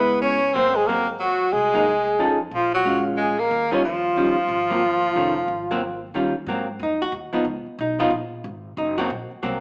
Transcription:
Already playing: upright bass C#2, hollow-body jazz guitar G#3 B3 E4, tenor saxophone B3, flugelhorn B4
0.21 tenor saxophone C#4, flugelhorn C#5
0.53 upright bass G#1, hollow-body jazz guitar F#3 A#3 C4, tenor saxophone C4, flugelhorn C5
0.74 tenor saxophone G#3, flugelhorn G#4
0.86 hollow-body jazz guitar F#3 A#3 C4, tenor saxophone A#3, flugelhorn A#4
1.20 tenor saxophone F#3, flugelhorn F#4
1.52 upright bass C2, tenor saxophone G#3, flugelhorn G#4
1.73 hollow-body jazz guitar F#3 A#3 D#4
2.19 upright bass F2, hollow-body jazz guitar F3 C#4 D#4 A4
2.51 upright bass A#1, tenor saxophone F3, flugelhorn F4
2.74 tenor saxophone F#3, flugelhorn F#4
2.85 hollow-body jazz guitar G#3 C#4 F4
3.17 tenor saxophone G#3, flugelhorn G#4
3.39 tenor saxophone A#3, flugelhorn A#4
3.51 upright bass D#2
3.71 hollow-body jazz guitar D#3 G3 C#4 F4, tenor saxophone C#4, flugelhorn C#5
3.85 tenor saxophone F3, flugelhorn F4
4.16 upright bass D#2, hollow-body jazz guitar D#3 G3 C#4 F4
4.49 upright bass G#1
4.70 hollow-body jazz guitar F#3 A#3 C4
5.16 upright bass F1, hollow-body jazz guitar D#3 A3 C#4
5.48 upright bass G#1
5.71 hollow-body jazz guitar F#3 A#3 C4
6.14 upright bass D#2, hollow-body jazz guitar D#3 G3 C#4 F4
6.46 upright bass G#2, hollow-body jazz guitar F#3 A#3 C4
6.79 upright bass F2, hollow-body jazz guitar D#4
7.02 hollow-body jazz guitar F#4
7.12 upright bass D#2
7.33 hollow-body jazz guitar F3 B3 D#4, muted upright bass stroke
7.45 upright bass C#2
7.66 muted upright bass stroke
7.79 upright bass B1, hollow-body jazz guitar D#4
7.99 hollow-body jazz guitar F3 B3 D#4 F4
8.11 upright bass A#1
8.44 upright bass G#1
8.77 upright bass F#1, hollow-body jazz guitar D#4
8.98 hollow-body jazz guitar F#3 A#3 C4 F#4
9.10 upright bass A#1
9.31 muted upright bass stroke
9.43 upright bass C2, hollow-body jazz guitar F#3 A#3 C4

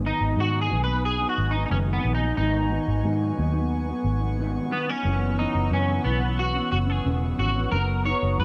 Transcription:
Already playing: fingered electric bass G#1, analog synth pad B3 F#5 G#5 D#6
0.02 clean electric guitar D#3 F#3 B3 D#4
0.06 clean electric guitar D#4
0.21 fingered electric bass G#1
0.36 clean electric guitar G#2 D#3 F#3 B3 D#4, fingered electric bass G#2
0.40 clean electric guitar F#4
0.61 clean electric guitar G#4
0.68 fingered electric bass B1, clean electric guitar D#3 F#3 B3 D#4
0.84 clean electric guitar B3 D#4 B4
0.89 clean electric guitar F#3
1.05 clean electric guitar G#4
1.18 clean electric guitar B3 D#4
1.22 clean electric guitar F#3
1.29 clean electric guitar F#4
1.38 fingered electric bass G#1
1.51 clean electric guitar D#4
1.55 clean electric guitar F#3 B3
1.66 clean electric guitar G#2 D#3 D#4
1.70 fingered electric bass F#1, clean electric guitar F#3 B3 C#4 D#4
1.93 clean electric guitar B3
2.02 fingered electric bass A#1, clean electric guitar D#3 F#3 B3 D#4
2.15 clean electric guitar D#4
2.19 clean electric guitar B3 D#4
2.24 clean electric guitar F#3
2.37 fingered electric bass G#1, clean electric guitar G#2 D#3 F#3 B3 D#4, analog synth pad C#6
2.69 clean electric guitar D#3 F#3 B3 D#4
2.88 fingered electric bass G#1
3.02 clean electric guitar G#2 D#3 F#3 B3 D#4, fingered electric bass G#2
3.37 fingered electric bass D#2, clean electric guitar D#3 F#3 B3
3.41 clean electric guitar D#4
3.53 clean electric guitar F#3 B3 D#4
3.87 clean electric guitar F#3 B3 D#4
4.04 fingered electric bass G#1
4.21 clean electric guitar F#3 B3 D#4
4.38 clean electric guitar G#2 D#3 F#3 B3 D#4
4.70 clean electric guitar D#3 F#3 B3 D#4
4.86 clean electric guitar B3 C#4 D#4
4.91 clean electric guitar F#3
5.03 fingered electric bass F#1, clean electric guitar F#2 C#3 E3 B3 C#4, analog synth pad E6
5.36 clean electric guitar C#3 E3 B3 C#4 D#4
5.55 fingered electric bass F#1
5.70 clean electric guitar F#2 C#3 E3 B3 C#4, fingered electric bass F#2
6.03 fingered electric bass B1, clean electric guitar C#3 E3 B3 C#4
6.20 clean electric guitar B3 C#4
6.24 clean electric guitar E3
6.39 clean electric guitar F#4
6.54 clean electric guitar E3 B3 C#4
6.72 fingered electric bass F#1, clean electric guitar F#4
6.87 clean electric guitar E3 B3 C#4 G#4
7.04 fingered electric bass E1, clean electric guitar F#2 C#3 E3 B3 C#4
7.37 fingered electric bass G#1, clean electric guitar C#3 E3 B3 F#4
7.41 clean electric guitar C#4
7.54 clean electric guitar B3 C#4
7.58 clean electric guitar E3
7.71 fingered electric bass F#1, clean electric guitar F#3 D#4 F#4 A#4, analog synth pad A#5 D#6
8.05 clean electric guitar D#4 F#4 B4 C#5
8.23 fingered electric bass F#1
8.38 fingered electric bass F#2, clean electric guitar F#3 D#4 F#4 B4

